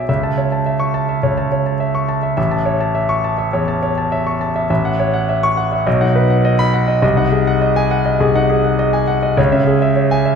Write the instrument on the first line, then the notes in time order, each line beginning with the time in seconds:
grand piano
Already playing: B2 D5 E5 G#5 D6
0.09 C#2 E5
0.23 A5
0.38 C#5
0.52 A5
0.66 E5
0.80 C#6
0.94 A5
1.09 E5
1.23 C#2 C#5
1.38 A5
1.52 C#5
1.66 A5
1.80 E5
1.95 C#6
2.09 A5
2.23 E5
2.37 A1 E5
2.51 A5
2.66 C#5
2.81 A5
2.95 E5
3.09 C#6
3.24 A5
3.38 E5
3.53 E2 C#5
3.68 A5
3.83 C#5
3.98 A5
4.12 E5
4.27 C#6
4.41 A5
4.56 E5
4.70 A1 E5
4.85 F#5
5.00 C#5
5.14 F#5
5.29 E5
5.43 C#6
5.57 F#5
5.72 E5
5.87 B1 D#5
6.01 D#4 F#5
6.15 B4
6.30 F#5
6.45 D#5
6.59 B5
6.74 F#5
6.88 D#5
7.02 C2 D#5
7.17 D#4 F#5
7.32 G#4
7.47 F#5
7.61 D#5
7.76 G#5
7.91 F#5
8.06 D#5
8.20 C2 G#4
8.35 D#4 F#5
8.50 G#4
8.64 F#5
8.79 D#5
8.93 G#5
9.07 F#5
9.23 D#5
9.37 C#2 C#5
9.52 C#4 E5
9.67 G#4
9.82 E5
9.96 C#5
10.11 G#5
10.25 E5